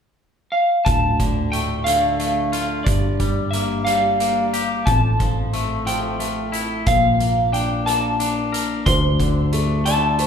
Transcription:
0.52 electric slide guitar F5
0.85 picked electric bass D1, clean electric guitar D2, electric slide guitar A5, kick, closed hi-hat
1.20 clean electric guitar D3, kick, closed hi-hat
1.52 clean electric guitar A3, electric slide guitar G5, closed hi-hat
1.84 clean electric guitar D3, electric slide guitar F5, closed hi-hat
2.20 clean electric guitar A3, closed hi-hat
2.52 clean electric guitar F4, closed hi-hat
2.84 picked electric bass G1, clean electric guitar G2, electric slide guitar D5, kick, closed hi-hat
3.20 clean electric guitar G3, kick, closed hi-hat
3.51 clean electric guitar A#3, electric slide guitar E5, closed hi-hat
3.85 clean electric guitar G3, electric slide guitar F5, closed hi-hat
4.20 clean electric guitar A#3, closed hi-hat
4.53 clean electric guitar G4, closed hi-hat
4.86 picked electric bass A1, clean electric guitar F2, electric slide guitar A5, kick, closed hi-hat
5.19 clean electric guitar F3, kick, closed hi-hat
5.53 clean electric guitar A3, closed hi-hat
5.86 clean electric guitar F3, electric slide guitar G5, closed hi-hat
6.20 clean electric guitar A3, closed hi-hat
6.52 clean electric guitar E4, closed hi-hat
6.87 picked electric bass A#1, clean electric guitar A#2, electric slide guitar F5, kick, closed hi-hat
7.20 clean electric guitar A#3, closed hi-hat
7.52 clean electric guitar D4, electric slide guitar G5, closed hi-hat
7.86 clean electric guitar A#3, electric slide guitar A5, closed hi-hat
8.20 clean electric guitar D4, closed hi-hat
8.52 clean electric guitar A#4, closed hi-hat
8.86 clean electric guitar D2, picked electric bass D2, felt piano C5, electric slide guitar C6, kick, closed hi-hat
9.20 clean electric guitar D3, kick, closed hi-hat
9.53 clean electric guitar A3, felt piano A4, closed hi-hat
9.85 clean electric guitar D3, felt piano D5, electric slide guitar A5, closed hi-hat
10.19 clean electric guitar A3, felt piano C5, closed hi-hat

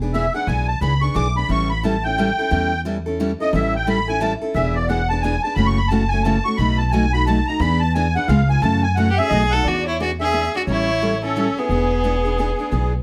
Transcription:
Already playing: upright bass E1
0.02 steel-string acoustic guitar B3 D4 G#4
0.14 steel-string acoustic guitar E3 B3 D4 G#4, accordion E5
0.34 steel-string acoustic guitar B3 D4 G#4, accordion F#5
0.47 upright bass B1, steel-string acoustic guitar E3 B3 D4 G#4, accordion G#5
0.68 accordion A5
0.81 upright bass C#2, steel-string acoustic guitar E3 B3 D4 G#4, accordion B5
1.01 steel-string acoustic guitar B3 D4 G#4, accordion C#6
1.15 upright bass B1, steel-string acoustic guitar E3 B3 D4 G#4, accordion D6
1.36 steel-string acoustic guitar B3 D4 G#4, accordion B5
1.49 upright bass A1, steel-string acoustic guitar E3 G3 C#4 E4 A4, accordion C#6
1.70 accordion B5
1.83 steel-string acoustic guitar E3 G3 C#4 E4 A4, accordion A5
2.04 steel-string acoustic guitar C#4 E4 A4, accordion G5
2.18 steel-string acoustic guitar E3 G3 C#4 E4 A4
2.39 steel-string acoustic guitar C#4 E4 A4
2.50 upright bass E2, steel-string acoustic guitar E3 G3 C#4 E4 A4
2.85 steel-string acoustic guitar E3 G3 C#4 E4 A4
3.06 steel-string acoustic guitar C#4 E4 A4
3.20 steel-string acoustic guitar E3 G3 C#4 E4 A4
3.40 steel-string acoustic guitar C#4 E4 A4, accordion D#5
3.53 upright bass A1, steel-string acoustic guitar E3 G3 C#4 E4 A4, accordion E5
3.76 accordion G5
3.87 steel-string acoustic guitar E3 G3 C#4 E4 A4, accordion B5
4.08 steel-string acoustic guitar C#4 E4 A4, accordion G#5
4.21 steel-string acoustic guitar E3 G3 C#4 E4 A4, accordion A5
4.41 steel-string acoustic guitar C#4 E4 A4
4.54 upright bass E1, steel-string acoustic guitar E3 B3 D4 G#4, accordion E5
4.75 accordion D5
4.89 steel-string acoustic guitar E3 B3 D4 G#4, accordion F#5
5.09 steel-string acoustic guitar B3 D4 G#4, accordion A5
5.21 steel-string acoustic guitar E3 B3 D4 G#4, accordion G#5
5.43 steel-string acoustic guitar B3 D4 G#4, accordion A5
5.55 upright bass F#1, steel-string acoustic guitar C#3 E3 A3 C#4 F#4, accordion B5
5.67 accordion C#6
5.77 accordion B5
5.88 steel-string acoustic guitar C#3 E3 A3 C#4, accordion A5
5.92 steel-string acoustic guitar F#4
6.09 steel-string acoustic guitar F#4, accordion G#5
6.13 steel-string acoustic guitar A3 C#4
6.23 steel-string acoustic guitar C#3 E3 A3 C#4 F#4, accordion A5
6.44 steel-string acoustic guitar A3 C#4 F#4, accordion C#6
6.57 upright bass B1, steel-string acoustic guitar B2 F#3 A3 D#4 F#4, accordion B5
6.78 accordion A5
6.91 steel-string acoustic guitar B2 F#3 A3 D#4 F#4, accordion G#5
7.13 steel-string acoustic guitar A3 D#4 F#4, accordion B5
7.26 steel-string acoustic guitar B2 F#3 A3 D#4 F#4, accordion A5
7.47 steel-string acoustic guitar A3 D#4 F#4, accordion A#5
7.60 upright bass E2, steel-string acoustic guitar E3 B3 D4 G#4, accordion B5
7.80 accordion A5
7.94 steel-string acoustic guitar E3 B3 D4 G#4, accordion G#5
8.16 steel-string acoustic guitar B3 D4 G#4, accordion F#5
8.28 upright bass C#2, steel-string acoustic guitar C#3 G#3 B3 F4 G#4, accordion F5
8.49 steel-string acoustic guitar B3 F4 G#4, accordion G#5
8.62 upright bass F#2, steel-string acoustic guitar C#3 E3 A3 C#4 F#4, accordion A5
8.83 accordion G#5
8.95 steel-string acoustic guitar C#3 E3 A3 C#4 F#4, accordion F#5
9.10 violin G4
9.17 steel-string acoustic guitar A3 C#4 F#4, violin G#4, accordion E5
9.29 upright bass B1, steel-string acoustic guitar B2 F#3 A3 D#4 F#4, accordion D#5
9.50 steel-string acoustic guitar D#4 F#4, violin A4, accordion F#5
9.55 steel-string acoustic guitar A3
9.64 upright bass E2, steel-string acoustic guitar E3 B3 D4 G#4, violin F#4, accordion D5
9.85 violin E4, accordion C#5
9.99 steel-string acoustic guitar E3 B3 D4 G#4, violin F#4, accordion D5
10.20 steel-string acoustic guitar B3 D4 G#4, violin G#4, accordion E5
10.32 steel-string acoustic guitar E3 B3 D4 G#4
10.54 steel-string acoustic guitar B3 D4 G#4, violin F#4, accordion D5
10.67 upright bass A1, steel-string acoustic guitar E3 G3 C#4 E4 A4, violin E4, accordion C#5
11.02 steel-string acoustic guitar E3 G3 C#4 E4 A4
11.23 violin C#4, steel-string acoustic guitar C#4 E4 A4, accordion A4
11.36 steel-string acoustic guitar E3 G3 C#4 E4 A4
11.56 violin B3, steel-string acoustic guitar C#4 E4 A4, accordion G#4
11.69 upright bass E1, steel-string acoustic guitar E3 B3 D4 G#4
12.04 steel-string acoustic guitar E3 B3 D4 G#4
12.25 steel-string acoustic guitar B3 D4 G#4
12.38 steel-string acoustic guitar E3 B3 D4 G#4
12.58 steel-string acoustic guitar B3 D4 G#4
12.71 upright bass B1, steel-string acoustic guitar E3 B3 D4 G#4

